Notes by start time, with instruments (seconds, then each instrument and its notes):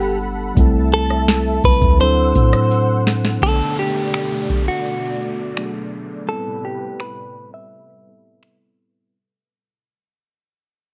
Already playing: 808-style bass G1, tine electric piano G3 B3 D4 A4 F#5, clean electric guitar G4, analog synth pad A4 F#5 B5
0.55 808-style bass C2, tine electric piano G3 A3 C4, analog synth pad A4 E5 A5, kick, closed hi-hat
0.59 tine electric piano E4 A4
0.94 clean electric guitar A4
1.10 cross-stick
1.28 snare, closed hi-hat
1.64 808-style bass C2, clean electric guitar B4, kick, closed hi-hat
1.73 closed hi-hat
1.82 808-style bass D2, kick, closed hi-hat
1.91 closed hi-hat
1.98 tine electric piano F#3 C4 D4, analog synth pad C5 F#5 E6, clean electric guitar C5, closed hi-hat
2.02 tine electric piano E4 A4
2.35 808-style bass A2, kick, closed hi-hat
2.53 cross-stick, closed hi-hat
2.71 closed hi-hat
3.07 snare
3.25 snare
3.41 analog synth pad B2 A3 D5, tine electric piano D3 A3 B3, clean electric guitar A4, kick, closed hi-hat, downlifter
3.45 tine electric piano D4 A4
3.79 clean electric guitar G4
4.14 finger snap, closed hi-hat
4.50 kick, closed hi-hat
4.68 clean electric guitar F#4
4.86 closed hi-hat
5.22 closed hi-hat
5.56 tine electric piano F#3 A3 B3 D4 G#4, finger snap, closed hi-hat
5.66 tine electric piano A4
6.26 analog synth pad A2 C3 G3 B4, tine electric piano G3 B3 C4 E4, clean electric guitar A4
6.32 tine electric piano A4
6.65 clean electric guitar G4
7.00 clean electric guitar B4, finger snap
7.54 clean electric guitar E5
8.06 tine electric piano G3 B3 C4 E4 A4
8.43 finger snap